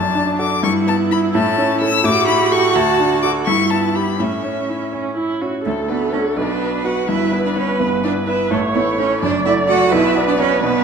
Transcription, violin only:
Already playing: A5
0.40 D6
0.64 C#6
0.88 A5
1.11 B5
1.35 A5
1.81 E6
2.05 D6
2.28 B5
2.52 C#6
2.76 A5
3.22 D6
3.46 C#6
3.70 A5
3.96 B5
4.20 E5
5.66 A4
5.89 B4
6.12 C#5
6.36 D5
6.84 F#5
7.08 E5
7.44 D5
7.56 C#5
7.80 B4
8.04 D5
8.27 E5
8.51 A4
8.74 B4
8.98 C#5
9.22 D5
9.45 E5
9.68 F#5
9.92 E5
10.28 D5
10.39 C#5
10.63 B4

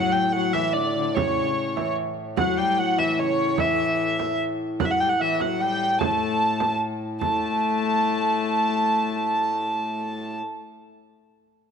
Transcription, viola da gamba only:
Already playing: F#3
0.34 F#3
0.54 E3
0.76 D3
0.96 D3
1.16 C#3
1.77 E3
2.38 F#3
2.58 G3
2.78 F#3
2.98 E3
3.18 C#3
3.59 E3
4.79 F#3
4.89 F#3
5.00 G3
5.21 E3
5.41 F#3
5.60 G3
6.00 A3
7.21 A3

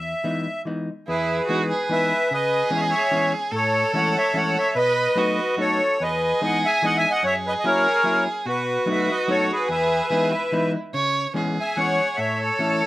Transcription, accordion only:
Already playing: E5
1.08 G#4 B4
1.91 B4 E5
2.33 B4 D#5
2.75 C#5 E5
2.81 D#5
2.89 C#5 E5
3.54 A4 C#5
3.95 C#5 F#5
4.17 C#5 E5
4.35 C#5 F#5
4.57 C#5 E5
4.75 B4 D#5
5.59 A4 C#5
6.01 B4 D#5
6.43 D#5 F#5
6.65 E5 G#5
6.84 D#5 F#5
6.96 E5 G#5
7.10 D#5 F#5
7.24 C#5 E5
7.47 B4 D#5
7.59 D#5
7.66 A#4 C#5
8.48 F#4 B4
8.90 B4 E5
9.10 B4 D#5
9.30 A4 C#5
9.52 G#4 B4
9.71 B4 E5
11.59 E5 G#5
11.76 C#5 F#5
12.17 C#5 E5
12.40 A4 C#5

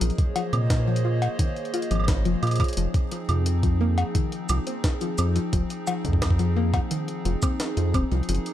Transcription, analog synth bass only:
0.01 A#1
0.53 A#2
1.91 G#1
2.25 F1
2.43 A#2
2.77 F1
3.29 F2
4.49 C2
5.18 F2
5.53 F1
6.05 F2
7.25 F1
7.77 F2
7.94 D#1
8.11 C2
8.29 F#1

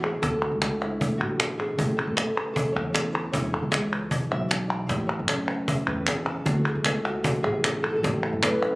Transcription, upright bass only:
Already playing: E2
0.22 D2
0.52 C#2
1.20 A1
1.78 A1
2.07 F#1
2.75 E2
3.34 E1
3.63 C#2
4.31 B1
4.90 A1
5.19 F#1
5.87 E2
6.46 D2
6.75 C#2
7.44 A1
8.03 A1
8.33 F#1

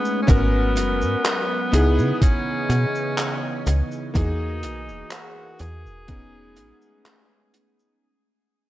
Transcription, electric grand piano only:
Already playing: B3 C#4 D#4 G#4
0.27 B3 C#4 F#4 A#4
1.72 B3 D#4 E4 G#4
4.14 A#3 D#4 F#4 G#4
6.08 B3 C#4 D#4 G#4

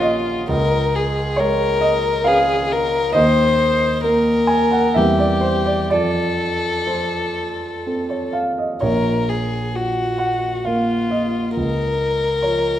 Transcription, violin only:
Already playing: F4
0.50 A#4
0.95 G#4
1.40 A#4
2.27 G#4
2.72 A#4
3.15 C5
4.05 A#4
4.96 G4
5.92 A4
8.83 A#4
9.29 G#4
9.75 F#4
10.66 F4
11.57 A#4

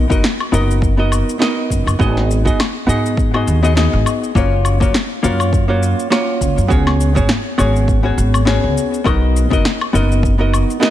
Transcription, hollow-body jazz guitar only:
0.10 B3 D#4 F#4 A#4 D#5
0.52 B3 D#4 F#4 A#4 D#5
0.97 B3 D#4 F#4 A#4 D#5
1.39 B3 D#4 F#4 A#4 D#5
1.99 B3 D#4 F#4 G#4 D#5
2.45 B3 D#4 F#4 G#4 D#5
2.87 B3 D#4 F#4 G#4 D#5
3.34 B3 D#4 F#4 G#4 D#5
3.63 B3 D#4 F#4 G#4 D#5
3.75 B3 D#4 F#4 G#4 D#5
4.35 A#3 C#4 F4 F#4 C#5
4.80 A#3 C#4 F4 F#4 C#5
5.23 A#3 C#4 F4 F#4 C#5
5.68 A#3 C#4 F4 F#4 C#5
6.10 A#3 C#4 F4 F#4 C#5
6.68 B3 C#4 F#4 G#4 C#5
7.15 B3 C#4 F#4 G#4 C#5
7.58 B3 C#4 F#4 G#4 C#5
8.03 B3 C#4 F#4 G#4 C#5
8.45 B3 C#4 F#4 G#4 C#5
9.04 B3 D#4 F#4 A#4 D#5
9.50 B3 D#4 F#4 A#4 D#5
9.93 B3 D#4 F#4 A#4 D#5
10.38 B3 D#4 F#4 A#4 D#5
10.80 B3 D#4 F#4 A#4 D#5

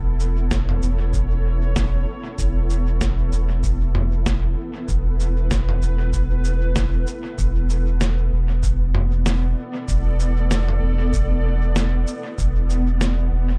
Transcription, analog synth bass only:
Already playing: E1
0.83 E1
2.39 E1
3.32 E1
4.89 E1
5.82 E1
7.38 E1
8.32 E1
9.88 E1
10.82 E1
12.38 E1
13.32 E1

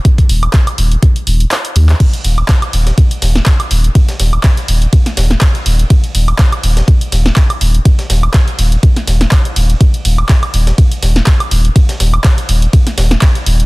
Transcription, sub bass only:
0.29 D#1
0.78 D#1
1.27 D#1
1.76 D#2
2.24 D#1
2.73 D#1
3.22 D#1
3.71 D#1
4.20 D#1
4.68 D#1
5.17 D#1
5.66 D#1
6.15 D#1
6.64 D#1
7.12 D#1
7.61 D#1
8.10 D#1
8.59 D#1
9.07 D#1
9.56 D#1
10.05 D#1
10.54 D#1
11.03 D#1
11.51 D#1
12.00 D#1
12.49 D#1
12.98 D#1
13.46 D#1

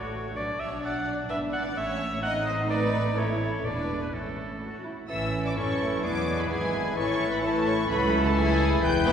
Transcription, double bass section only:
Already playing: A1
0.38 B1
1.30 G#1
1.76 A1
3.65 E1
4.14 A1
5.10 A1
5.57 F#1
6.03 E1
6.50 G#1
6.97 A1
7.90 C#2
8.83 E1

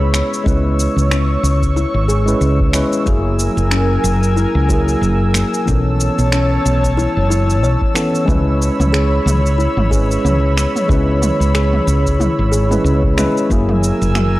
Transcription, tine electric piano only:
Already playing: G#3 C#4 E4 B4
0.44 G#3 C#4 E4 B4
2.26 G#3 C#4 E4 B4
2.74 G#3 C#4 E4 B4
3.05 F#3 A#3 E4 G#4
4.69 F#3 A#3 E4 G#4
5.66 E3 B3 C#4 A4
7.94 E3 B3 C#4 A4
8.25 G#3 C#4 E4 B4
9.89 G#3 C#4 E4 B4
10.88 G#3 C#4 E4 B4
12.70 G#3 C#4 E4 B4
13.17 G#3 C#4 E4 B4
13.50 F#3 A#3 E4 G#4

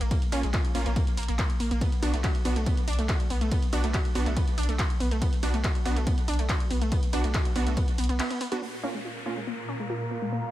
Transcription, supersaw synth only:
0.32 A#3 C#4 F4
0.75 A#3 C#4 F4
2.03 B3 D4 F#4
2.45 B3 D4 F#4
3.73 B3 D4 F#4
4.15 B3 D4 F#4
5.43 B3 D4 F#4
5.85 B3 D4 F#4
7.13 B3 D4 F#4
7.56 B3 D4 F#4
8.52 B3 D4 F#4
8.83 A#3 C#4 F4
9.26 A#3 C#4 F4

